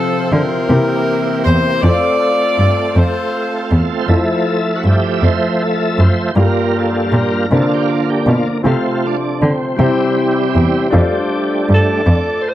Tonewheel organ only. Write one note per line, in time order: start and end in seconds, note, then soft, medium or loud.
0.00 0.70 F3 medium
0.00 0.67 C4 medium
0.00 0.69 C5 medium
0.67 1.82 E3 medium
0.67 1.82 A#3 medium
0.67 1.82 C4 medium
0.67 1.82 G4 medium
1.83 4.05 A3 medium
1.83 4.06 C4 medium
1.83 4.07 F4 medium
1.83 4.06 A4 medium
4.01 4.09 C5 medium
4.06 6.32 F3 soft
4.06 6.31 A3 soft
4.06 4.80 A4 medium
4.06 6.32 E5 soft
4.76 4.84 F#4 medium
4.86 5.25 G4 medium
5.24 5.63 C5 medium
5.62 6.01 A4 medium
6.00 6.35 C5 medium
6.36 7.46 G3 soft
6.36 7.47 A#3 soft
6.36 7.47 F4 medium
6.36 6.78 A#4 medium
6.79 7.16 A4 medium
7.18 7.54 A#4 medium
7.53 8.62 A#3 medium
7.53 8.49 D4 soft
7.53 7.91 F4 medium
7.53 7.73 A4 medium
7.74 7.92 G4 medium
7.92 8.10 F4 medium
8.10 8.29 G4 medium
8.29 8.48 F4 medium
8.50 8.57 D4 medium
8.67 9.16 A3 medium
8.67 9.06 C4 medium
8.67 9.17 F4 medium
9.07 9.44 D4 medium
9.44 9.77 C4 medium
9.77 10.88 G3 medium
9.77 10.88 C4 soft
9.77 10.89 E4 medium
9.81 11.66 G4 medium
10.90 12.01 G3 medium
10.90 12.02 A3 soft
10.90 12.02 D4 medium
12.06 12.42 D5 loud
12.41 12.51 C5 medium